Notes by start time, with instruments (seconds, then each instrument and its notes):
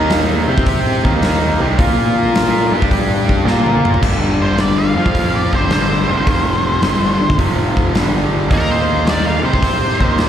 Already playing: picked electric bass D#2, distorted electric guitar D#3 A#3 D#4
0.10 snare, open hi-hat
0.48 picked electric bass C3, distorted electric guitar C4 G4 C5
0.58 kick
0.66 kick, open hi-hat
1.04 picked electric bass D#2, distorted electric guitar D#3 A#3 D#4, kick
1.22 snare, open hi-hat
1.60 picked electric bass C2, distorted electric guitar C3 G3 C4
1.79 picked electric bass A#2, distorted electric guitar A#3 F4 A#4, kick, open hi-hat
2.35 snare, open hi-hat
2.71 picked electric bass G2, distorted electric guitar G3 D4 G4
2.82 kick
2.91 kick, open hi-hat
3.29 kick
3.45 picked electric bass A#2, distorted electric guitar A#3 F4 A#4, snare
3.66 high tom
3.85 mid tom
3.94 floor tom
4.02 picked electric bass G1, distorted electric guitar G2 D3 G3, kick, crash
4.42 lead electric guitar C5
4.58 lead electric guitar D5, snare, open hi-hat
4.78 lead electric guitar F5
4.95 picked electric bass F2, distorted electric guitar F3 C4 F4
5.06 kick
5.15 kick, open hi-hat
5.35 lead electric guitar D5
5.52 picked electric bass G1, distorted electric guitar G2 D3 G3, lead electric guitar C5, kick
5.70 lead electric guitar C5, snare, open hi-hat
6.08 picked electric bass F1, distorted electric guitar F2 C3 F3
6.27 kick, open hi-hat
6.82 picked electric bass G1, distorted electric guitar G2 D3 G3, snare, open hi-hat
7.20 picked electric bass G1, distorted electric guitar G2 D3
7.30 kick
7.38 picked electric bass F1, distorted electric guitar F2 C3 F3, kick, open hi-hat
7.77 kick
7.93 picked electric bass G1, distorted electric guitar G2 D3 G3, snare, open hi-hat
8.49 picked electric bass D#2, distorted electric guitar D#3 A#3 D#4, lead electric guitar A#4, kick, open hi-hat
8.71 lead electric guitar C5
9.07 lead electric guitar D5, snare, open hi-hat
9.26 lead electric guitar F5
9.43 picked electric bass C3, distorted electric guitar C4 G4 C5, lead electric guitar C5
9.54 kick
9.63 kick, open hi-hat
10.00 picked electric bass D#2, distorted electric guitar D#3 A#3 D#4, kick
10.18 snare, open hi-hat